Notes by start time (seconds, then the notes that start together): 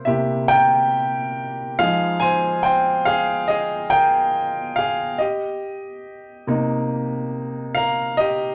Already playing: C3 A#3 E4 C5
0.05 C3 A#3 E4 G4 E5
0.48 A#4 G5
1.79 F3 G#3 D#4 G#4 F5
2.20 C5 G#5
2.63 C5 G5
3.05 G#4 F5
3.48 G#4 D#5
3.90 A#4 G5
4.76 G#4 F5
5.18 G4 D#5
6.47 C3 A#3 D#4
7.75 A#4 F5
8.17 G4 D#5